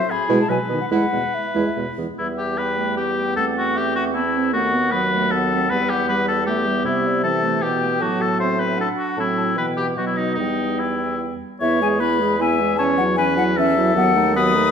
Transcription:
Already playing: oboe C5, flute E5
0.10 oboe G#4, flute B5
0.29 bassoon B2, french horn G#3, clarinet E4
0.41 flute A5
0.49 bassoon B2, french horn B2, clarinet F#3, oboe B4, flute G#5
0.69 bassoon B2, french horn D#3, clarinet B3
0.81 flute F#5
0.91 bassoon E2, french horn G#3, clarinet E4, oboe B4, flute F#5
1.12 bassoon E2, french horn B2, clarinet G#3
1.34 flute E5
1.55 bassoon E2, french horn G#3, clarinet E4
1.76 bassoon E2, french horn B2, clarinet G#3
1.97 bassoon E2, french horn E3, clarinet B3
2.18 bassoon E2, french horn G3, clarinet B3, oboe E4, flute E5
2.38 oboe G4
2.58 clarinet B3, oboe B4, flute G5
2.78 clarinet A3
2.97 clarinet B3, oboe G4
3.36 bassoon E2, french horn A3, clarinet C4, oboe A4, flute F#5
3.58 oboe F#4
3.76 oboe G4, flute E5
3.96 oboe F#4
4.14 french horn B3, oboe E4, flute A5
4.35 french horn C4
4.53 bassoon D#2, french horn A3, clarinet B3, oboe F#4, flute F#5
4.74 french horn B3
4.92 french horn F#3, clarinet B3, oboe B4
5.12 clarinet A3
5.31 clarinet B3, oboe A4, flute F#5
5.52 clarinet C4
5.70 bassoon E2, french horn G3, clarinet B3, oboe B4
5.89 oboe G4
6.08 french horn G3, oboe B4
6.28 oboe A4
6.46 french horn A3, clarinet B3, oboe G4, flute E5
6.66 french horn G3
6.85 bassoon C3, oboe E4, flute E5
7.07 flute D5
7.23 french horn E3, clarinet C4, oboe A4, flute E5
7.43 clarinet A3
7.62 bassoon B2, clarinet B3, oboe G4, flute G5
8.01 bassoon A2, french horn F#3, oboe F#4, flute A5
8.21 oboe A4
8.39 clarinet C4, oboe C5, flute E5
8.59 oboe B4
8.77 clarinet D4, oboe A4, flute F#5
8.98 oboe F#4
9.17 bassoon A2, french horn F#3, clarinet C4, oboe E4, flute A5
9.37 flute A5
9.57 bassoon B2, french horn E3, clarinet B3, oboe B4, flute G5
9.77 oboe G4
9.97 bassoon B2, french horn F#3, clarinet B3, oboe F#4, flute D#5
10.06 oboe E4
10.17 oboe D#4
10.35 bassoon E2, french horn G3, clarinet B3, oboe D#4
10.40 flute G5
10.79 oboe E4
11.60 bassoon E2, french horn B3, clarinet E4, oboe C#5, flute E5
11.81 french horn G#3, clarinet G#4, flute G#5
12.00 french horn B3, clarinet E4, oboe B4, flute B5
12.21 french horn G#3, clarinet G#4
12.39 french horn B3, clarinet E4, oboe E5, flute G#5
12.60 french horn G#3, clarinet G#4
12.77 french horn E3, clarinet C#4, oboe C#5, flute A5
12.98 french horn F#3, clarinet E4, flute F#5
13.16 french horn E3, clarinet C#4, oboe B4, flute G#5
13.37 french horn F#3, clarinet E4, flute F#5
13.56 french horn E3, clarinet C#4, oboe A4, flute E5
13.76 french horn F#3, clarinet E4
13.95 bassoon D#2, french horn F#3, clarinet B3, flute F#5
14.15 french horn A3, clarinet D#4
14.35 french horn F#3, clarinet B3, oboe B4, flute D#6
14.54 french horn A3, clarinet D#4

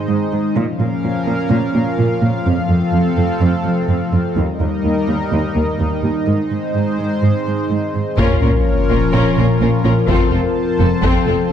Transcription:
Already playing: analog synth pad G#3 D#4 C5 D#5
0.08 cello section G#2
0.32 cello section G#2
0.56 cello section A#2, analog synth pad F3 C#4 A#4 F5
0.79 cello section A#2
1.03 cello section A#2
1.26 cello section A#2
1.50 cello section A#2
1.74 cello section A#2
1.98 cello section A#2
2.21 cello section A#2
2.45 cello section F2, analog synth pad C4 A4
2.69 cello section F2
2.93 cello section F2
3.17 cello section F2
3.40 cello section F2
3.64 cello section F2
3.88 cello section F2
4.12 cello section F2
4.36 cello section D#2, analog synth pad G3 D#4 A#4 D#5
4.60 cello section D#2
4.84 cello section D#2
5.08 cello section D#2
5.31 cello section D#2
5.55 cello section D#2
5.79 cello section D#2
6.03 cello section D#2
6.27 cello section G#2, analog synth pad G#3 C5
6.51 cello section G#2
6.75 cello section G#2
6.98 cello section G#2
7.22 cello section G#2
7.46 cello section G#2
7.70 cello section G#2
7.94 cello section G#2
8.17 double bass section A#1, cello section A#2, analog synth pad F3 F4 A#4 C#5, viola section C#4, french horn section C#4, violin section F4 A#4, taiko, sub drop
8.41 double bass section A#1, cello section A#2, viola section C#4, violin section F4 A#4
8.89 double bass section A#1, cello section A#2, viola section C#4, violin section F4 A#4
9.13 double bass section A#1, cello section A#2, viola section C#4, violin section F4 A#4
9.37 double bass section A#1, cello section A#2, viola section C#4, violin section F4 A#4
9.60 double bass section A#1, cello section A#2, viola section C#4, violin section F4 A#4
9.84 double bass section A#1, cello section A#2, viola section C#4, violin section F4 A#4
10.08 double bass section F1, cello section F2, french horn section C4, viola section C4, violin section F4 A4, analog synth pad C5 A5, taiko
10.31 double bass section F1, cello section F2, viola section C4, violin section F4 A4
10.79 double bass section F1, cello section F2, viola section C4, violin section F4 A4
11.02 double bass section F1, cello section F2, viola section C4, violin section F4 A4, french horn section A4, taiko
11.26 double bass section F1, cello section F2, viola section C4, violin section F4 A4

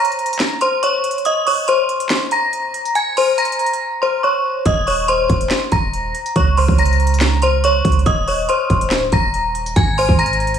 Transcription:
Already playing: synth bell A#5
0.00 synth bell A#6
0.05 closed hi-hat
0.12 closed hi-hat
0.19 closed hi-hat
0.26 closed hi-hat
0.33 closed hi-hat
0.39 snare, clap, closed hi-hat
0.61 synth bell C5 C6, closed hi-hat
0.83 synth bell C#5 C#6, closed hi-hat
1.04 closed hi-hat
1.11 closed hi-hat
1.18 closed hi-hat
1.25 synth bell D#5 D#6, closed hi-hat
1.47 synth bell C#5 C#6, open hi-hat
1.68 synth bell C5 C6, closed hi-hat
1.89 closed hi-hat
2.00 closed hi-hat
2.09 snare, clap, closed hi-hat
2.31 synth bell A#5 A#6, closed hi-hat
2.53 closed hi-hat
2.74 closed hi-hat
2.85 closed hi-hat
2.95 synth bell G#5 G#6, closed hi-hat
3.17 synth bell C5 C6, open hi-hat
3.38 synth bell A#5 A#6, closed hi-hat
3.45 closed hi-hat
3.52 closed hi-hat
3.59 closed hi-hat
3.66 closed hi-hat
3.73 closed hi-hat
4.02 synth bell C5 C6
4.23 synth bell C#5 C#6
4.66 808-style bass D#1, synth bell D#5 D#6, kick, closed hi-hat
4.87 synth bell C#5 C#6, open hi-hat
5.08 synth bell C5 C6, closed hi-hat
5.29 808-style bass D#1, kick, closed hi-hat
5.41 closed hi-hat
5.50 snare, clap, closed hi-hat
5.72 808-style bass D#1, synth bell A#5 A#6, kick, closed hi-hat
5.93 closed hi-hat
6.15 closed hi-hat
6.26 closed hi-hat
6.36 808-style bass C#2, synth bell C#5 C#6, kick, closed hi-hat
6.57 synth bell C5 C6, open hi-hat
6.68 808-style bass C#2, kick
6.78 synth bell A#5 A#6, closed hi-hat
6.86 closed hi-hat
6.93 closed hi-hat
7.00 closed hi-hat
7.07 closed hi-hat
7.14 closed hi-hat
7.20 snare, clap, closed hi-hat
7.42 synth bell C5 C6, closed hi-hat
7.64 synth bell C#5 C#6, closed hi-hat
7.85 808-style bass C#2, kick, closed hi-hat
7.92 closed hi-hat
7.99 closed hi-hat
8.06 808-style bass D#1, synth bell D#5 D#6, kick, closed hi-hat
8.28 synth bell C#5 C#6, open hi-hat
8.49 synth bell C5 C6, closed hi-hat
8.70 808-style bass D#1, kick, closed hi-hat
8.81 closed hi-hat
8.90 808-style bass C#1, snare, clap, closed hi-hat
9.12 808-style bass D#1, synth bell A#5 A#6, kick, closed hi-hat
9.34 closed hi-hat
9.55 closed hi-hat
9.66 closed hi-hat
9.76 808-style bass G#1, synth bell G#5 G#6, kick, closed hi-hat
9.98 synth bell C5 C6, open hi-hat
10.09 808-style bass G#1, kick
10.19 synth bell A#5 A#6, closed hi-hat
10.26 closed hi-hat
10.33 closed hi-hat
10.40 closed hi-hat
10.47 closed hi-hat
10.54 closed hi-hat

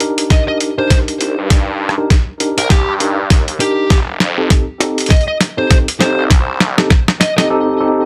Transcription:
0.00 tine electric piano D4 D#4 G4 A#4, closed hi-hat
0.18 closed hi-hat
0.30 lead electric guitar D#5, kick, snare, closed hi-hat
0.48 tine electric piano D4 D#4 G4 A#4, lead electric guitar D#5
0.60 closed hi-hat
0.78 tine electric piano D4 D#4 G4 A#4, lead electric guitar C5
0.90 kick, snare, closed hi-hat
1.08 closed hi-hat
1.20 detuned saw bass C2, closed hi-hat
1.38 detuned saw bass G2
1.50 kick, snare, closed hi-hat
1.89 cross-stick
1.98 tine electric piano D4 D#4 G4 A#4
2.10 kick, snare, closed hi-hat
2.40 tine electric piano D4 D#4 G4 A#4, closed hi-hat
2.58 detuned saw bass C2, lead electric guitar A#4, closed hi-hat
2.70 lead electric guitar G4, kick, snare, closed hi-hat
2.88 detuned saw bass G2
3.00 tine electric piano D4 D#4 G4 A#4, closed hi-hat
3.30 detuned saw bass D#2, kick, snare, closed hi-hat
3.48 detuned saw bass D#2, closed hi-hat
3.60 tine electric piano D4 D#4 G4 A#4, lead electric guitar G4, closed hi-hat
3.90 detuned saw bass F1, kick, snare, closed hi-hat
4.20 detuned saw bass F2, snare
4.38 tine electric piano C4 D#4 G4 A4
4.50 kick, snare, closed hi-hat
4.80 tine electric piano C4 D#4 G4 A4, snare, closed hi-hat
4.98 closed hi-hat
5.00 closed hi-hat
5.06 lead electric guitar D#5, closed hi-hat
5.10 kick, snare, closed hi-hat
5.16 closed hi-hat
5.21 closed hi-hat
5.28 lead electric guitar D#5
5.41 snare, closed hi-hat
5.58 tine electric piano C4 D#4 G4 A4, lead electric guitar C5
5.71 kick, snare, closed hi-hat
5.88 closed hi-hat
6.00 detuned saw bass F1, tine electric piano C4 D#4 G4 A4, lead electric guitar C5, snare, closed hi-hat
6.18 detuned saw bass C2
6.31 kick, snare, closed hi-hat
6.60 snare
6.78 tine electric piano C4 D#4 G4 A4, snare
6.90 kick, snare
7.08 snare
7.20 lead electric guitar D#5, snare, closed hi-hat
7.38 tine electric piano C4 D#4 G4 A4, lead electric guitar D#5, snare, closed hi-hat
7.50 tine electric piano C4 D#4 G4 A4
7.80 tine electric piano C4 D#4 G4 A4

